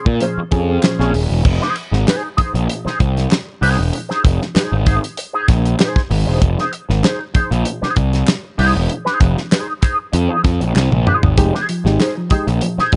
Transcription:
0.06 A#2, muted clean electric guitar stroke, kick
0.20 A#2 F3 C#4 G#4 C5, closed hi-hat
0.38 muted picked electric bass stroke
0.52 F2 C4 C#4 G#4, muted clean electric guitar stroke, kick, closed hi-hat
0.69 C#4 G#4 C5
0.83 A#2 F3 C#4 G#4 C5, snare, clap, closed hi-hat
0.99 A#1 C4 C#4 G#4, snare
1.14 D#1 C#4 G#4, open hi-hat
1.30 E1, muted clean electric guitar stroke
1.45 F1, muted clean electric guitar stroke, kick, crash
1.61 D#4 G#4 C5, snare
1.76 muted clean electric guitar stroke, closed hi-hat
1.92 G#1, muted clean electric guitar stroke, snare
2.07 D#4 G#4 C5, snare, clap, closed hi-hat
2.23 muted clean electric guitar stroke
2.37 D#4 G#4 C5, muted picked electric bass stroke, kick, closed hi-hat
2.54 A#1, muted clean electric guitar stroke, closed hi-hat
2.68 muted clean electric guitar stroke, closed hi-hat
2.85 D#4 G#4 C5, muted picked electric bass stroke, snare
3.00 C2, muted clean electric guitar stroke, kick, closed hi-hat
3.16 muted clean electric guitar stroke, snare, closed hi-hat
3.31 snare, clap, closed hi-hat
3.47 muted clean electric guitar stroke
3.61 C2 D#4 G#4 C5, open hi-hat
3.78 E1, muted clean electric guitar stroke
3.93 muted clean electric guitar stroke, closed hi-hat
4.09 D#4 G#4 C5, snare
4.24 F1, muted clean electric guitar stroke, kick, closed hi-hat
4.41 muted clean electric guitar stroke, snare
4.55 D#4 G#4 C5, muted picked electric bass stroke, snare, clap, closed hi-hat
4.71 G#1, muted clean electric guitar stroke
4.86 D#4 G#4 C5, kick, closed hi-hat
5.02 muted clean electric guitar stroke, closed hi-hat
5.17 muted clean electric guitar stroke, closed hi-hat
5.33 D#4 G#4 C5
5.48 A#1, muted clean electric guitar stroke, kick, snare, closed hi-hat
5.65 muted clean electric guitar stroke, closed hi-hat
5.79 D#4 G#4 C5, snare, clap, closed hi-hat
5.96 kick, snare
6.11 G#1, muted clean electric guitar stroke, open hi-hat
6.27 E1 D#4 G#4 C5
6.42 F1, kick, closed hi-hat
6.58 D#4 G#4 C5, snare
6.72 muted clean electric guitar stroke, closed hi-hat
6.89 G#1, muted clean electric guitar stroke, snare
7.03 D#4 G#4 C5, snare, clap, closed hi-hat
7.20 muted clean electric guitar stroke
7.34 D#4 G#4 C5, muted picked electric bass stroke, kick, closed hi-hat
7.51 A#1, muted clean electric guitar stroke, closed hi-hat
7.65 muted clean electric guitar stroke, closed hi-hat
7.82 D#4 G#4 C5, muted picked electric bass stroke, snare
7.96 C2, muted clean electric guitar stroke, kick, closed hi-hat
8.13 muted clean electric guitar stroke, snare, closed hi-hat
8.27 snare, clap, closed hi-hat
8.43 muted clean electric guitar stroke
8.57 C2 D#4 G#4 C5, open hi-hat
8.74 E1, muted clean electric guitar stroke
8.89 muted clean electric guitar stroke, closed hi-hat
9.05 D#4 G#4 C5, snare
9.20 F1, kick, closed hi-hat
9.37 muted clean electric guitar stroke, snare
9.51 D#4 G#4 C5, snare, clap, closed hi-hat
9.67 muted clean electric guitar stroke
9.81 D#4 G#4 C5, kick, clap, closed hi-hat
9.98 muted clean electric guitar stroke
10.12 F2, muted clean electric guitar stroke, closed hi-hat
10.29 D#4 G#4 C5
10.44 F2, kick, snare, closed hi-hat
10.60 A#1, muted clean electric guitar stroke, closed hi-hat
10.76 C2, snare, clap
10.91 A#1, muted clean electric guitar stroke, high tom
11.06 D#4 G#4 C5, mid tom
11.23 G#1, muted clean electric guitar stroke, floor tom
11.37 F1 G#3 D#4 G4, muted clean electric guitar stroke, kick, closed hi-hat
11.53 D#4 G#4 C5, snare
11.68 F3, muted clean electric guitar stroke, closed hi-hat
11.85 G#1 G#3 D#4 G4, muted clean electric guitar stroke, snare
11.99 D#4 G#4 C5, snare, clap, closed hi-hat
12.16 F3, muted clean electric guitar stroke
12.30 G#3 D#4 G4 G#4 C5, muted picked electric bass stroke, kick, closed hi-hat
12.47 A#1, muted clean electric guitar stroke, closed hi-hat
12.61 F3, muted clean electric guitar stroke, closed hi-hat
12.78 D#4 G#4 C5, muted picked electric bass stroke, snare
12.92 C2, muted clean electric guitar stroke, kick, closed hi-hat

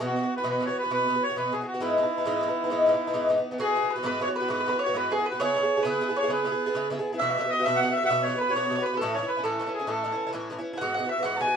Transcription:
0.00 B2 E3 B3 F#4
0.05 F#4
0.16 B2 E3 B3 F#4
0.23 E3 B3 F#4
0.37 E3 B3 F#4 B4
0.44 B2 E3 B3 F#4
0.50 B4
0.60 B2 E3 B3 F#4
0.66 B3 F#4 C#5
0.70 E3
0.79 B4
0.83 E3 B3 F#4
0.90 B2 E3 B3 F#4 B4
1.08 B2 E3 B3 F#4
1.15 E3 B3 F#4
1.23 C#5
1.29 E3 B3 F#4
1.36 B2 E3 B3 F#4 B4
1.52 B2 E3 B3 F#4 G#4
1.61 E3 B3 F#4 G#4
1.68 F#4
1.74 E3 B3 F#4
1.80 G#2 E3 B3 D#4 E4
1.97 G#2 E3 B3 D#4
2.03 E3 B3 D#4
2.18 E3 B3 D#4
2.25 G#2 E3 B3 D#4
2.41 G#2 E3 B3 D#4
2.48 E3 B3 D#4
2.64 E3 B3 D#4
2.70 G#2 E3 B3 D#4
2.86 G#2 E3 B3 D#4
2.93 E3 B3 D#4
3.07 E3 B3 D#4
3.13 G#2 E3 B3 D#4
3.29 G#2 E3 B3 D#4
3.36 E3 B3 D#4
3.51 E3 B3 D#4
3.58 G#2 E3 B3 F#4 G#4
3.75 G#2 E3 B3 F#4
3.82 E3 B3 F#4
3.90 B4
3.96 E3 B3 F#4
4.03 G#2 E3 B3 F#4 B4
4.20 G#2 E3 B3 F#4 C#5
4.28 E3 B3 F#4
4.36 B4
4.40 E3 B3 F#4
4.48 G#2 E3 B3 F#4 B4
4.60 B4
4.65 G#2 E3 B3 F#4 B4
4.73 E3 B3 F#4
4.79 C#5
4.86 E3 B3 F#4
4.94 G#2 E3 B3 F#4 B4
4.98 B4
5.10 G#2 E3 B3 F#4 G#4
5.18 E3 B3 F#4
5.26 B4
5.32 E3 B3 F#4
5.40 C#3 B3 E4 G#4 C#5
5.44 C#5
5.54 C#3 B3 E4 G#4
5.63 B3 E4 G#4
5.77 B3 E4 G#4
5.83 C#3 B3 E4 G#4 B4
5.89 B4
6.01 C#3 B3 E4 G#4
6.09 B3 E4 G#4
6.16 C#5
6.23 B3 E4 G#4
6.28 C#3 B3 E4 G#4 B4
6.45 C#3 B3 E4 G#4
6.52 B3 E4 G#4
6.66 B3 E4 G#4
6.75 C#3 B3 E4 G#4
6.90 C#3 B3 E4 G#4
6.99 B3 E4 G#4
7.13 B3 E4 G#4
7.18 B2 E3 E5
7.22 B3 F#4
7.31 E5
7.38 B2 E3 B3 F#4 E5
7.45 E3 B3 F#4
7.49 D#5
7.60 E3 B3 F#4 E5
7.66 B2 E3 B3 F#4 E5
7.76 F#5
7.82 B2 E3 B3 F#4 F#5
7.90 E3 B3 F#4 E5
7.97 E5
8.03 E3 B3 F#4 E5 F#5
8.10 B2 E3 B3 F#4 E5
8.22 C#5
8.26 B2 E3 B3 F#4 C#5
8.34 E3 B3 F#4 B4
8.41 B4
8.49 E3 B3 F#4 C#5
8.55 B2 E3 B3 F#4 C#5
8.66 C#5
8.70 B2 E3 B3 F#4
8.75 F#4 C#5
8.80 E3 B3 B4
8.86 B4
8.94 E3 B3 F#4 A4
8.99 A2 E3 C#4 E4 A4
9.14 A2 C#5
9.18 E3 C#4 E4
9.23 E3 C#4 E4
9.28 B4
9.37 E3 C#4 E4
9.44 A2 E3 C#4 E4 A4
9.59 A2 E3 C#4 E4
9.66 E3 C#4 E4
9.74 G#4
9.80 E3 C#4 E4
9.87 A2 E3 C#4 E4 A4
10.04 A2 E3 C#4 E4
10.12 E3 C#4 E4
10.27 E3 C#4 E4
10.33 A2 E3 C#4 E4
10.50 A2 E3 C#4 E4
10.58 E3 C#4 E4
10.73 E3 C#4 E4
10.78 G#2 E3 F#5
10.82 B3 F#4
10.94 G#2 F#5
10.98 E3 B3 F#4
11.04 E3 B3 F#4
11.09 E5
11.18 E3 B3 F#4
11.23 G#2 E3 B3 F#4 F#5
11.36 G#2 A5
11.41 E3 B3 F#4 G#5
11.47 E3 B3 F#4

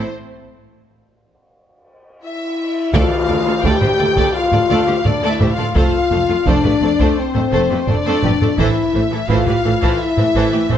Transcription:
Already playing: E4 C5
2.23 E4 E5
2.93 D2 A3 F4 A4 D5 F5, taiko, tam-tam
3.29 D2 A3 A4 D5
3.46 D2 A3 F4 A4
3.63 D2 A3 G4 A4 D5 G5, taiko
3.81 D2 A3 G4 C5, taiko low-mid
3.98 D2 A3 A4 D5
4.16 D2 A3 A4 D5, taiko
4.34 F4 F5
4.52 D2 A3 A4 D5, taiko low-mid
4.69 D2 A3 A4 D5
4.87 D2 A3 G4 C5
5.04 D2 A3 D4 A4 D5, taiko low-mid
5.22 D2 A3 A4 D5
5.28 E4 E5
5.40 D2 A3 G4 C5, taiko low-mid
5.52 F4 F5
5.58 D2 A3 A4 D5, taiko low-mid
5.75 F1 F2 A3 F4 A4 C5 F5, taiko
6.11 F1 F2 A3 A4 C5
6.29 F2 A3 F4 A4
6.46 F1 F2 A3 D4 A4 C5 D5, taiko
6.64 F2 A3 G4 B4, taiko low-mid
6.81 F1 F2 A3 A4 C5
6.99 F2 A3 A4 C5, taiko
7.18 C4 C5
7.34 F2 A3 A4 C5, taiko low-mid
7.52 F1 F2 A3 A4 C5
7.70 F2 A3 G4 B4
7.87 F1 F2 A3 D4 A4 C5 D5, taiko low-mid
8.04 F2 A3 A4 C5
8.22 F1 F2 A3 G4 B4, taiko low-mid
8.40 F2 A3 A4 C5, taiko low-mid
8.58 A1 A2 E3 E4 A4 C5 E5, taiko
8.94 A1 A2 E3 A4 C5
9.11 A2 E3 E4 A4
9.28 A1 A2 E3 F4 A4 C5 F5, taiko
9.46 A2 E3 G4 B4, taiko low-mid
9.64 A1 A2 E3 A4 C5
9.81 A2 E3 A4 C5, taiko
10.00 E4 E5
10.17 A2 E3 A4 C5, taiko low-mid
10.34 A1 A2 E3 A4 C5
10.52 A2 E3 G4 B4
10.69 A1 A2 E3 C4 A4 C5, taiko low-mid

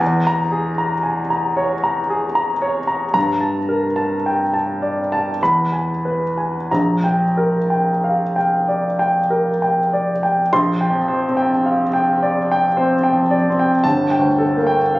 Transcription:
Already playing: G#5
0.00 E2
0.27 A#5
0.52 G#4
0.78 A#5
1.03 G#5
1.30 A#5
1.57 C#5
1.84 A#5
2.10 G#4
2.35 A#5
2.62 C#5
2.87 A#5
3.14 G2 A#5
3.41 A5
3.69 A#4
3.96 A5
4.26 G5
4.53 A5
4.82 D5
5.12 A5
5.43 E2 B5
5.72 G#5
6.05 B4
6.37 G#5
6.71 A#1 A#5
7.04 G5
7.37 A#4
7.70 G5
8.04 F5
8.36 G5
8.68 D5
8.99 G5
9.30 A#4
9.62 G5
9.93 D5
10.23 G5
10.53 A#1 C6
10.81 G5
10.90 F2
11.08 C5
11.29 C4
11.37 G5
11.66 F5
11.93 G5
12.22 D5
12.52 G5
12.77 C4 C5
13.04 G5
13.13 F2
13.31 D5
13.50 C4
13.59 G5
13.84 G1 A5
14.11 G5
14.19 D2
14.38 A4
14.57 A#3
14.67 G5
14.95 F5

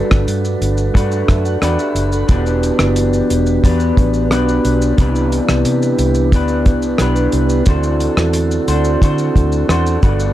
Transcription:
Already playing: G3 A3 D4 F#4 A4 B4
0.11 G1, kick, cross-stick, shaker
0.27 G2, closed hi-hat, shaker
0.45 shaker
0.61 G1, closed hi-hat, shaker
0.77 shaker
0.94 G2 A3 D4 F#4 B4, kick, closed hi-hat, shaker
1.12 shaker
1.28 F#2 E5, kick, cross-stick, closed hi-hat, shaker
1.45 F#5, shaker
1.62 E2 A3 D4 F#4 B4 D5 G5, cross-stick, closed hi-hat, shaker
1.79 G4 E5 B5, shaker
1.95 F#1, closed hi-hat, shaker
2.12 A4 F#5, shaker
2.27 E1 E3 B3 D4 F#4 G4, kick, closed hi-hat, shaker
2.32 B4
2.46 shaker
2.63 closed hi-hat, shaker
2.79 F#1, cross-stick, shaker
2.96 closed hi-hat, shaker
3.13 shaker
3.30 E1, closed hi-hat, shaker
3.46 shaker
3.63 E2 B3 D4 G4 B4, kick, closed hi-hat, shaker
3.80 shaker
3.97 A1, kick, closed hi-hat, shaker
4.14 shaker
4.31 B1 B3 D4 G4 B4, cross-stick, closed hi-hat, shaker
4.49 shaker
4.65 B1, closed hi-hat, shaker
4.82 shaker
4.96 C2 C3 E3 B3 D4 E4 G4, kick, closed hi-hat, shaker
5.01 G4 B4
5.16 shaker
5.32 closed hi-hat, shaker
5.49 C2, cross-stick, shaker
5.65 C3, closed hi-hat, shaker
5.82 shaker
5.99 C2, closed hi-hat, shaker
6.15 shaker
6.32 D2 B3 D4 G4 B4, kick, closed hi-hat, shaker
6.48 shaker
6.66 C2, kick, closed hi-hat, shaker
6.82 shaker
6.98 B1 B3 D4 G4 B4, cross-stick, closed hi-hat, shaker
7.16 shaker
7.32 C2, closed hi-hat, shaker
7.49 shaker
7.65 D2 D3 E3 A3 C4 D4 E4 F#4 C5, kick, closed hi-hat, shaker
7.70 A4
7.83 shaker
8.00 closed hi-hat, shaker
8.17 E2, cross-stick, shaker
8.33 closed hi-hat, shaker
8.51 shaker
8.68 D2 A3 D4 F#4 C5, closed hi-hat, shaker
8.84 shaker
9.02 D3 A3 D4 F#4 C5, kick, closed hi-hat, shaker
9.18 shaker
9.36 D2, kick, closed hi-hat, shaker
9.52 shaker
9.69 E2 A3 D4 F#4 C5, cross-stick, closed hi-hat, shaker
9.86 shaker
10.00 G1 B3 D4 F#4 B4, kick, closed hi-hat, shaker
10.05 G3 A3 D4 A4
10.20 shaker

